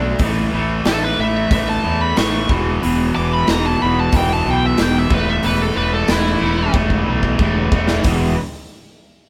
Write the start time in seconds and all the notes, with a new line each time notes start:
Already playing: B1 D3 A3 D4
0.19 A1 A2 E3 A3, kick, open hi-hat
0.53 A1 A2 E3 A3
0.85 A1 A2 E3 A3 A4, snare, open hi-hat
1.04 B4
1.19 A1 A2 E3 A3 E5
1.51 A1 A2 E3 A3 E5, kick, open hi-hat
1.69 A5
1.84 E2 A2 E3 A3
2.01 B5
2.16 A1 A2 E3 A3 C#6, snare, open hi-hat
2.49 E1 E2 B2 E3, kick
2.81 E1 E2 B2 E3, open hi-hat
3.14 E1 E2 B2 E3 D6
3.33 B5
3.47 E1 E2 B2 E3 A#5, snare, open hi-hat
3.66 A5
3.80 E1 E2 B2 E3 B5
4.00 A5
4.12 E1 E2 B2 E3, kick, open hi-hat
4.17 G5
4.33 A5
4.45 B1 E2 B2 E3
4.50 G5
4.66 E5
4.78 E1 E2 B2 E3, snare, open hi-hat
4.82 G5
4.99 E5
5.10 E1 A2 E3 A3 B4, kick
5.29 E5
5.43 E1 A2 E3 A3 B4, open hi-hat
5.62 A4
5.76 E1 A2 E3 A3 B4
5.94 A4
6.08 E1 A2 E3 A3 E4, snare, open hi-hat
6.41 E1 A2 E3 A3
6.73 E1 A2 E3 A3, kick
6.90 kick
7.06 B1 A2 E3 A3
7.23 kick
7.39 E1 A2 E3 A3, kick
7.72 E1 A2 E3 A3, kick
7.88 snare
8.04 E1 E2 B2 E3, kick, open hi-hat